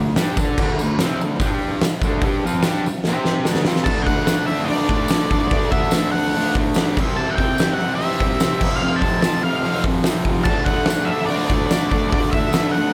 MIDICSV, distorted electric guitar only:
0, 0, Header, 1, 3, 480
1, 0, Start_track
1, 0, Tempo, 412655
1, 670, Time_signature, 4, 2, 24, 8
1, 15040, End_track
2, 0, Start_track
2, 0, Title_t, "Distorted electric guitar"
2, 0, Program_c, 0, 30
2, 0, Note_on_c, 0, 50, 68
2, 0, Note_on_c, 0, 57, 71
2, 151, Note_off_c, 0, 50, 0
2, 158, Note_off_c, 0, 57, 0
2, 192, Note_on_c, 0, 55, 100
2, 204, Note_on_c, 0, 67, 107
2, 205, Note_on_c, 0, 62, 95
2, 424, Note_off_c, 0, 55, 0
2, 430, Note_off_c, 0, 62, 0
2, 430, Note_off_c, 0, 67, 0
2, 444, Note_on_c, 0, 62, 90
2, 449, Note_on_c, 0, 69, 90
2, 460, Note_on_c, 0, 74, 98
2, 670, Note_off_c, 0, 62, 0
2, 672, Note_off_c, 0, 69, 0
2, 678, Note_off_c, 0, 74, 0
2, 690, Note_on_c, 0, 50, 105
2, 705, Note_on_c, 0, 57, 106
2, 715, Note_on_c, 0, 62, 110
2, 913, Note_off_c, 0, 50, 0
2, 920, Note_off_c, 0, 57, 0
2, 925, Note_off_c, 0, 62, 0
2, 956, Note_on_c, 0, 50, 70
2, 958, Note_on_c, 0, 57, 73
2, 1125, Note_off_c, 0, 50, 0
2, 1126, Note_off_c, 0, 57, 0
2, 1167, Note_on_c, 0, 48, 87
2, 1180, Note_on_c, 0, 55, 86
2, 1186, Note_on_c, 0, 60, 99
2, 1391, Note_off_c, 0, 48, 0
2, 1397, Note_off_c, 0, 55, 0
2, 1401, Note_off_c, 0, 60, 0
2, 1416, Note_on_c, 0, 50, 66
2, 1417, Note_on_c, 0, 57, 82
2, 1595, Note_off_c, 0, 50, 0
2, 1595, Note_off_c, 0, 57, 0
2, 1643, Note_on_c, 0, 55, 95
2, 1649, Note_on_c, 0, 67, 113
2, 1651, Note_on_c, 0, 62, 109
2, 2109, Note_off_c, 0, 55, 0
2, 2112, Note_off_c, 0, 67, 0
2, 2113, Note_off_c, 0, 62, 0
2, 2367, Note_on_c, 0, 50, 91
2, 2380, Note_on_c, 0, 57, 93
2, 2388, Note_on_c, 0, 62, 104
2, 2591, Note_off_c, 0, 50, 0
2, 2596, Note_off_c, 0, 57, 0
2, 2601, Note_off_c, 0, 62, 0
2, 2601, Note_on_c, 0, 55, 99
2, 2615, Note_on_c, 0, 62, 104
2, 2625, Note_on_c, 0, 67, 117
2, 2828, Note_off_c, 0, 55, 0
2, 2835, Note_off_c, 0, 62, 0
2, 2839, Note_off_c, 0, 67, 0
2, 2843, Note_on_c, 0, 53, 97
2, 2848, Note_on_c, 0, 60, 92
2, 2858, Note_on_c, 0, 65, 90
2, 3069, Note_off_c, 0, 53, 0
2, 3071, Note_off_c, 0, 60, 0
2, 3076, Note_off_c, 0, 65, 0
2, 3081, Note_on_c, 0, 55, 85
2, 3084, Note_on_c, 0, 62, 90
2, 3091, Note_on_c, 0, 67, 99
2, 3307, Note_off_c, 0, 55, 0
2, 3309, Note_off_c, 0, 62, 0
2, 3312, Note_off_c, 0, 67, 0
2, 3576, Note_on_c, 0, 60, 97
2, 3586, Note_on_c, 0, 67, 108
2, 3591, Note_on_c, 0, 72, 101
2, 4034, Note_off_c, 0, 60, 0
2, 4040, Note_off_c, 0, 67, 0
2, 4042, Note_off_c, 0, 72, 0
2, 4047, Note_on_c, 0, 50, 94
2, 4057, Note_on_c, 0, 57, 99
2, 4061, Note_on_c, 0, 62, 107
2, 4270, Note_off_c, 0, 50, 0
2, 4275, Note_off_c, 0, 57, 0
2, 4277, Note_off_c, 0, 62, 0
2, 4277, Note_on_c, 0, 53, 85
2, 4287, Note_on_c, 0, 60, 99
2, 4296, Note_on_c, 0, 65, 100
2, 4505, Note_off_c, 0, 53, 0
2, 4510, Note_off_c, 0, 60, 0
2, 4514, Note_off_c, 0, 65, 0
2, 4516, Note_on_c, 0, 50, 99
2, 4526, Note_on_c, 0, 57, 107
2, 4538, Note_on_c, 0, 62, 112
2, 4758, Note_off_c, 0, 50, 0
2, 4758, Note_off_c, 0, 57, 0
2, 4762, Note_on_c, 0, 50, 75
2, 4763, Note_on_c, 0, 57, 83
2, 4765, Note_off_c, 0, 62, 0
2, 4769, Note_on_c, 0, 62, 93
2, 4971, Note_off_c, 0, 50, 0
2, 4976, Note_on_c, 0, 50, 84
2, 4980, Note_off_c, 0, 57, 0
2, 4985, Note_on_c, 0, 57, 89
2, 4991, Note_off_c, 0, 62, 0
2, 4995, Note_on_c, 0, 62, 90
2, 5210, Note_off_c, 0, 57, 0
2, 5212, Note_off_c, 0, 50, 0
2, 5217, Note_off_c, 0, 62, 0
2, 5224, Note_on_c, 0, 57, 103
2, 5226, Note_on_c, 0, 50, 99
2, 5231, Note_on_c, 0, 62, 96
2, 5410, Note_off_c, 0, 50, 0
2, 5415, Note_off_c, 0, 57, 0
2, 5424, Note_on_c, 0, 50, 112
2, 5429, Note_on_c, 0, 57, 99
2, 5430, Note_off_c, 0, 62, 0
2, 5444, Note_on_c, 0, 62, 118
2, 5664, Note_off_c, 0, 50, 0
2, 5670, Note_off_c, 0, 57, 0
2, 5678, Note_on_c, 0, 50, 78
2, 5679, Note_off_c, 0, 62, 0
2, 5684, Note_on_c, 0, 57, 86
2, 5693, Note_on_c, 0, 62, 100
2, 5928, Note_off_c, 0, 50, 0
2, 5937, Note_off_c, 0, 62, 0
2, 5941, Note_off_c, 0, 57, 0
2, 5942, Note_on_c, 0, 50, 97
2, 5951, Note_on_c, 0, 62, 96
2, 5955, Note_on_c, 0, 57, 94
2, 6163, Note_off_c, 0, 50, 0
2, 6170, Note_off_c, 0, 57, 0
2, 6170, Note_off_c, 0, 62, 0
2, 6177, Note_on_c, 0, 50, 87
2, 6184, Note_on_c, 0, 57, 86
2, 6184, Note_on_c, 0, 62, 92
2, 6417, Note_off_c, 0, 57, 0
2, 6420, Note_off_c, 0, 50, 0
2, 6426, Note_off_c, 0, 62, 0
2, 6431, Note_on_c, 0, 57, 108
2, 6434, Note_on_c, 0, 50, 93
2, 6440, Note_on_c, 0, 62, 100
2, 6645, Note_off_c, 0, 50, 0
2, 6651, Note_off_c, 0, 57, 0
2, 6655, Note_off_c, 0, 62, 0
2, 6659, Note_on_c, 0, 50, 91
2, 6665, Note_on_c, 0, 57, 83
2, 6669, Note_on_c, 0, 62, 94
2, 6887, Note_off_c, 0, 50, 0
2, 6892, Note_off_c, 0, 57, 0
2, 6901, Note_on_c, 0, 50, 79
2, 6906, Note_on_c, 0, 57, 86
2, 6907, Note_off_c, 0, 62, 0
2, 6921, Note_on_c, 0, 62, 91
2, 7133, Note_off_c, 0, 50, 0
2, 7145, Note_off_c, 0, 57, 0
2, 7145, Note_off_c, 0, 62, 0
2, 7147, Note_on_c, 0, 50, 89
2, 7159, Note_on_c, 0, 57, 102
2, 7159, Note_on_c, 0, 62, 109
2, 7388, Note_off_c, 0, 50, 0
2, 7399, Note_off_c, 0, 57, 0
2, 7402, Note_on_c, 0, 50, 89
2, 7405, Note_off_c, 0, 62, 0
2, 7413, Note_on_c, 0, 57, 105
2, 7419, Note_on_c, 0, 62, 103
2, 7621, Note_off_c, 0, 50, 0
2, 7633, Note_off_c, 0, 57, 0
2, 7635, Note_on_c, 0, 50, 94
2, 7646, Note_off_c, 0, 62, 0
2, 7647, Note_on_c, 0, 57, 99
2, 7660, Note_on_c, 0, 62, 98
2, 7874, Note_off_c, 0, 50, 0
2, 7880, Note_off_c, 0, 57, 0
2, 7888, Note_on_c, 0, 50, 84
2, 7889, Note_off_c, 0, 62, 0
2, 7894, Note_on_c, 0, 57, 100
2, 7903, Note_on_c, 0, 62, 93
2, 8103, Note_off_c, 0, 50, 0
2, 8106, Note_off_c, 0, 57, 0
2, 8110, Note_off_c, 0, 62, 0
2, 8131, Note_on_c, 0, 48, 92
2, 8137, Note_on_c, 0, 55, 94
2, 8143, Note_on_c, 0, 60, 112
2, 8339, Note_off_c, 0, 48, 0
2, 8353, Note_on_c, 0, 48, 109
2, 8359, Note_off_c, 0, 55, 0
2, 8371, Note_off_c, 0, 60, 0
2, 8373, Note_on_c, 0, 55, 104
2, 8376, Note_on_c, 0, 60, 123
2, 8597, Note_off_c, 0, 48, 0
2, 8603, Note_off_c, 0, 55, 0
2, 8611, Note_on_c, 0, 48, 87
2, 8613, Note_off_c, 0, 60, 0
2, 8617, Note_on_c, 0, 55, 89
2, 8617, Note_on_c, 0, 60, 85
2, 8836, Note_off_c, 0, 48, 0
2, 8839, Note_off_c, 0, 55, 0
2, 8850, Note_on_c, 0, 48, 78
2, 8853, Note_on_c, 0, 55, 90
2, 8855, Note_off_c, 0, 60, 0
2, 8859, Note_on_c, 0, 60, 90
2, 9062, Note_off_c, 0, 48, 0
2, 9076, Note_off_c, 0, 55, 0
2, 9076, Note_on_c, 0, 48, 96
2, 9088, Note_off_c, 0, 60, 0
2, 9090, Note_on_c, 0, 55, 99
2, 9092, Note_on_c, 0, 60, 111
2, 9305, Note_off_c, 0, 48, 0
2, 9309, Note_off_c, 0, 55, 0
2, 9312, Note_off_c, 0, 60, 0
2, 9319, Note_on_c, 0, 48, 94
2, 9323, Note_on_c, 0, 55, 117
2, 9326, Note_on_c, 0, 60, 103
2, 9550, Note_off_c, 0, 48, 0
2, 9562, Note_off_c, 0, 55, 0
2, 9564, Note_on_c, 0, 48, 100
2, 9567, Note_off_c, 0, 60, 0
2, 9576, Note_on_c, 0, 55, 99
2, 9581, Note_on_c, 0, 60, 103
2, 9781, Note_off_c, 0, 48, 0
2, 9787, Note_off_c, 0, 55, 0
2, 9788, Note_off_c, 0, 60, 0
2, 9795, Note_on_c, 0, 48, 98
2, 9801, Note_on_c, 0, 55, 98
2, 9801, Note_on_c, 0, 60, 100
2, 10017, Note_off_c, 0, 48, 0
2, 10020, Note_off_c, 0, 55, 0
2, 10020, Note_off_c, 0, 60, 0
2, 10033, Note_on_c, 0, 41, 101
2, 10040, Note_on_c, 0, 48, 111
2, 10049, Note_on_c, 0, 53, 100
2, 10233, Note_off_c, 0, 41, 0
2, 10246, Note_off_c, 0, 48, 0
2, 10247, Note_on_c, 0, 41, 98
2, 10254, Note_off_c, 0, 53, 0
2, 10260, Note_on_c, 0, 48, 110
2, 10268, Note_on_c, 0, 53, 117
2, 10495, Note_off_c, 0, 48, 0
2, 10499, Note_off_c, 0, 41, 0
2, 10509, Note_on_c, 0, 48, 93
2, 10513, Note_on_c, 0, 41, 94
2, 10517, Note_off_c, 0, 53, 0
2, 10531, Note_on_c, 0, 53, 94
2, 10716, Note_off_c, 0, 41, 0
2, 10730, Note_on_c, 0, 41, 79
2, 10731, Note_off_c, 0, 48, 0
2, 10733, Note_off_c, 0, 53, 0
2, 10744, Note_on_c, 0, 48, 78
2, 10747, Note_on_c, 0, 53, 93
2, 10961, Note_off_c, 0, 41, 0
2, 10971, Note_off_c, 0, 48, 0
2, 10975, Note_off_c, 0, 53, 0
2, 10975, Note_on_c, 0, 41, 93
2, 10985, Note_on_c, 0, 48, 99
2, 10989, Note_on_c, 0, 53, 108
2, 11208, Note_off_c, 0, 41, 0
2, 11217, Note_off_c, 0, 48, 0
2, 11222, Note_on_c, 0, 41, 104
2, 11223, Note_off_c, 0, 53, 0
2, 11231, Note_on_c, 0, 48, 110
2, 11237, Note_on_c, 0, 53, 117
2, 11444, Note_off_c, 0, 41, 0
2, 11458, Note_on_c, 0, 41, 97
2, 11460, Note_off_c, 0, 48, 0
2, 11464, Note_off_c, 0, 53, 0
2, 11474, Note_on_c, 0, 48, 98
2, 11478, Note_on_c, 0, 53, 104
2, 11692, Note_off_c, 0, 41, 0
2, 11703, Note_off_c, 0, 48, 0
2, 11704, Note_off_c, 0, 53, 0
2, 11706, Note_on_c, 0, 41, 93
2, 11717, Note_on_c, 0, 48, 87
2, 11718, Note_on_c, 0, 53, 96
2, 11947, Note_off_c, 0, 41, 0
2, 11955, Note_off_c, 0, 48, 0
2, 11961, Note_off_c, 0, 53, 0
2, 11961, Note_on_c, 0, 41, 85
2, 11969, Note_on_c, 0, 48, 84
2, 11975, Note_on_c, 0, 53, 97
2, 12181, Note_off_c, 0, 41, 0
2, 12185, Note_off_c, 0, 48, 0
2, 12188, Note_off_c, 0, 53, 0
2, 12208, Note_on_c, 0, 57, 111
2, 12211, Note_on_c, 0, 50, 99
2, 12217, Note_on_c, 0, 62, 109
2, 12439, Note_off_c, 0, 50, 0
2, 12443, Note_on_c, 0, 50, 93
2, 12451, Note_off_c, 0, 57, 0
2, 12453, Note_off_c, 0, 62, 0
2, 12456, Note_on_c, 0, 57, 103
2, 12458, Note_on_c, 0, 62, 90
2, 12675, Note_off_c, 0, 50, 0
2, 12680, Note_on_c, 0, 50, 79
2, 12682, Note_off_c, 0, 62, 0
2, 12683, Note_off_c, 0, 57, 0
2, 12687, Note_on_c, 0, 57, 88
2, 12687, Note_on_c, 0, 62, 85
2, 12892, Note_off_c, 0, 50, 0
2, 12905, Note_off_c, 0, 57, 0
2, 12906, Note_on_c, 0, 50, 86
2, 12914, Note_off_c, 0, 62, 0
2, 12919, Note_on_c, 0, 57, 91
2, 12928, Note_on_c, 0, 62, 98
2, 13124, Note_off_c, 0, 50, 0
2, 13127, Note_off_c, 0, 57, 0
2, 13137, Note_off_c, 0, 62, 0
2, 13138, Note_on_c, 0, 50, 93
2, 13141, Note_on_c, 0, 57, 108
2, 13151, Note_on_c, 0, 62, 103
2, 13366, Note_off_c, 0, 50, 0
2, 13374, Note_off_c, 0, 57, 0
2, 13377, Note_off_c, 0, 62, 0
2, 13380, Note_on_c, 0, 50, 88
2, 13388, Note_on_c, 0, 57, 95
2, 13391, Note_on_c, 0, 62, 93
2, 13625, Note_off_c, 0, 50, 0
2, 13629, Note_off_c, 0, 57, 0
2, 13638, Note_off_c, 0, 62, 0
2, 13639, Note_on_c, 0, 50, 85
2, 13643, Note_on_c, 0, 57, 96
2, 13652, Note_on_c, 0, 62, 107
2, 13853, Note_off_c, 0, 50, 0
2, 13867, Note_on_c, 0, 50, 86
2, 13870, Note_off_c, 0, 57, 0
2, 13874, Note_off_c, 0, 62, 0
2, 13884, Note_on_c, 0, 57, 98
2, 13888, Note_on_c, 0, 62, 98
2, 14109, Note_off_c, 0, 50, 0
2, 14109, Note_off_c, 0, 57, 0
2, 14120, Note_off_c, 0, 62, 0
2, 14123, Note_on_c, 0, 50, 99
2, 14123, Note_on_c, 0, 57, 103
2, 14134, Note_on_c, 0, 62, 113
2, 14358, Note_off_c, 0, 50, 0
2, 14361, Note_off_c, 0, 57, 0
2, 14364, Note_off_c, 0, 62, 0
2, 14372, Note_on_c, 0, 50, 83
2, 14374, Note_on_c, 0, 57, 93
2, 14378, Note_on_c, 0, 62, 100
2, 14600, Note_off_c, 0, 50, 0
2, 14607, Note_off_c, 0, 57, 0
2, 14609, Note_off_c, 0, 62, 0
2, 14614, Note_on_c, 0, 50, 89
2, 14621, Note_on_c, 0, 57, 85
2, 14623, Note_on_c, 0, 62, 102
2, 14832, Note_off_c, 0, 50, 0
2, 14844, Note_off_c, 0, 57, 0
2, 14846, Note_on_c, 0, 50, 92
2, 14847, Note_off_c, 0, 62, 0
2, 14858, Note_on_c, 0, 57, 94
2, 14861, Note_on_c, 0, 62, 101
2, 15040, Note_off_c, 0, 50, 0
2, 15040, Note_off_c, 0, 57, 0
2, 15040, Note_off_c, 0, 62, 0
2, 15040, End_track
3, 0, Start_track
3, 0, Title_t, "Muted distorted electric guitar strokes"
3, 2141, Note_on_c, 9, 29, 62
3, 2257, Note_off_c, 9, 29, 0
3, 3333, Note_on_c, 9, 29, 64
3, 3450, Note_off_c, 9, 29, 0
3, 15040, End_track
0, 0, End_of_file